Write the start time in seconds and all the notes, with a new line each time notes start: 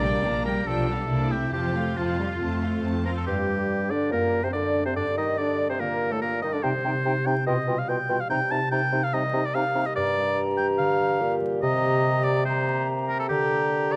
Already playing: A#1 A#2 D4 D5
0.03 G3 A#3 G5
0.24 A#1 A#3 D4 A#5
0.45 G3 A#3 G4 A#4 G5
0.67 B1 B2 F3 D4 A4 G5
0.88 G3 B3 D4 F4 F5
1.09 C2 C3 A#3 D4 E4 D5
1.31 A3 C4 D4 E4 G4 E5
1.53 F2 F3 C4 F4 G4 A5
1.75 A3 C4 F4 F5
1.96 F2 F3 C4 F4 A5
2.18 G3 F4 A4 F5
2.40 F2 A3 C4 A5
2.61 C4 F4 F5
2.83 F2 C4 F4 A5
3.05 C4 F4 A4 A#4 F5
3.17 A4
3.26 G2 G3 G4
3.49 G3
3.70 D4
3.90 D3 G3 D4 D5
4.12 F#2 A#2 A#3 A#4
4.33 A3
4.43 C3 C4 C5
4.53 D3 D4 D5
4.75 A3
4.85 C3 C4 C5
4.96 G2 D3 D4 D5
5.17 D#3 G3 D#4 D#5
5.38 D3 D4 D5
5.59 G3
5.69 C3 C4 C5
5.79 A#2 D3 A#3 A#4
6.02 G3
6.12 A2 A3 A4
6.21 A#2 A#3 D4 A#4
6.42 D#3 G3 D#4 D#5
6.53 D3 D4 D5
6.63 C3 D#4 C5 G5
6.84 C3 C4 D#4 G5
7.05 C3 D#4 G4 G5
7.26 C3 C4 D#4 G5
7.46 B2 F4 D#5 G5
7.68 B2 G3 F4 G5
7.79 F5
7.89 B2 F4 G5
8.09 B2 G3 F4 G5
8.20 F5
8.30 C3 D#4 G5 A#5
8.50 C3 A#3 D#4 A5 A#5
8.71 C3 D#4 G4 G5 A#5
8.92 C3 A#3 D#4 A#5
9.04 F5
9.13 C3 G3 D#4 D#5 A#5
9.33 C3 A#3 D#4 A#5
9.46 D5
9.54 C3 D#4 G4 F5 A#5
9.75 C3 A#3 D#4 A#5
9.86 D#5
9.96 G2 G4 D5 A#5
10.17 G3
10.38 G4
10.57 G3 G5
10.78 D3 F5
10.99 G3
11.20 A#2 G4
11.41 G3
11.62 C3 G4 D#5 A#5
11.83 A#3
12.04 G4
12.24 A#3 D5
12.45 G3 G4 C5 A#5
12.66 A#3
12.87 G4
13.08 A#3 A#4
13.19 A4
13.29 D3 G4 A#5
13.51 A#3
13.71 G4
13.92 A#3 D5